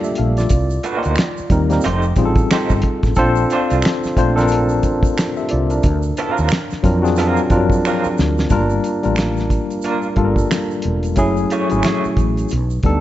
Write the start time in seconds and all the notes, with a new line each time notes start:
Already playing: G3 A3 A#3 D4 F4 G4 A4 D5
0.04 G4 E5, shaker
0.15 A#1 A4 F5, closed hi-hat
0.37 F4 D5, snare, closed hi-hat, shaker
0.49 C2, kick, closed hi-hat, shaker
0.70 shaker
0.83 A3 D4 F#4 B4, closed hi-hat, shaker
0.97 A#3 D#4 G4 C5
1.03 D2, closed hi-hat, shaker
1.16 finger snap, closed hi-hat, shaker
1.18 finger snap, snare
1.37 muted fretless electric bass stroke, shaker
1.50 D#2 G3 A#3 C4 D#4 A#4, kick, closed hi-hat, shaker
1.70 G3 A#3 C4 D#4 A#4, snare, closed hi-hat, shaker
1.81 A3 D#4, closed hi-hat, shaker
1.85 F1 G4 C5
2.02 shaker
2.16 A1 G3 C4 D#4 F4 G#4, kick, closed hi-hat, shaker
2.25 A4
2.35 kick, closed hi-hat, shaker
2.51 A3 D#4 G4 C5, finger snap, muted fretless electric bass stroke, snare, closed hi-hat, shaker
2.70 G1, kick, shaker
2.82 kick, closed hi-hat
3.03 A1, kick, snare, closed hi-hat, shaker
3.15 A#1 C4 D4 F4 A4 C5, kick, closed hi-hat, shaker
3.36 shaker
3.50 A3 D4 F4 C5, closed hi-hat, shaker
3.70 C2, closed hi-hat, shaker
3.82 finger snap, closed hi-hat, shaker
3.85 finger snap, snare
4.04 muted fretless electric bass stroke, snare, shaker
4.16 A#1 A3 C4 D4 F4 C5, kick, closed hi-hat, shaker
4.36 C4 D4 F4 A4 A#4, closed hi-hat, shaker
4.40 snare
4.48 closed hi-hat, shaker
4.69 shaker
4.83 A1, kick, closed hi-hat, shaker
5.03 kick, closed hi-hat, shaker
5.18 finger snap, snare, closed hi-hat, shaker
5.37 G4 E5, shaker
5.49 C2 F4 D5, closed hi-hat
5.70 D4 A#4, closed hi-hat, shaker
5.83 D2, kick, closed hi-hat, shaker
6.03 shaker
6.17 F3 B3 E4 A4, closed hi-hat, shaker
6.31 F#3 C4 F4 A#4
6.37 D#2, shaker
6.49 finger snap, closed hi-hat, shaker
6.52 finger snap, snare
6.71 muted fretless electric bass stroke, snare, shaker
6.83 F2 F#3 C4 D4 F4 A#4, kick, closed hi-hat, shaker
7.02 C4 D4 F4 F#4 G#4, shaker
7.07 snare
7.16 F#3 C4 F4 A#4, closed hi-hat, shaker
7.37 shaker
7.49 F#2 F3 C4 D4 F4 A#4, kick, closed hi-hat, shaker
7.56 F#3
7.70 kick, shaker
7.85 F#3 C4 F4 A#4, finger snap, shaker
8.04 muted fretless electric bass stroke, shaker
8.18 D2, snare, shaker
8.38 snare, shaker
8.50 G1 G3 A#3 D4 F4 A#4, kick, closed hi-hat, shaker
8.70 shaker
8.84 closed hi-hat, shaker
9.03 A1 G3 A#3 D4 F4 A#4, closed hi-hat, shaker
9.16 finger snap, closed hi-hat, shaker
9.18 finger snap, snare
9.37 snare, shaker
9.50 kick, closed hi-hat, shaker
9.70 closed hi-hat, shaker
9.82 A#3 D4 F4, closed hi-hat, shaker
9.86 A#4
10.02 shaker
10.16 G1 G3 A#3 D4 F4 A4, kick, closed hi-hat
10.25 A#4
10.36 kick, shaker
10.51 finger snap, snare, closed hi-hat, shaker
10.71 shaker
10.82 E1, closed hi-hat
11.03 closed hi-hat, shaker
11.16 F#1 F#3 A3 C#4 E4 G#4, kick, closed hi-hat, shaker
11.37 shaker
11.50 A3 E4 G#4 C#5, closed hi-hat, shaker
11.69 G#1 F#3 A3 C#4 E4 G#4, closed hi-hat, shaker
11.83 finger snap, closed hi-hat, shaker
11.85 A3 E4 G#4 C#5, finger snap, snare
12.04 muted fretless electric bass stroke, shaker
12.17 A1, kick, closed hi-hat, shaker
12.37 closed hi-hat, shaker
12.49 B1, closed hi-hat, shaker
12.70 shaker
12.83 D2 G3 B3 D4 D#4 A4, kick, closed hi-hat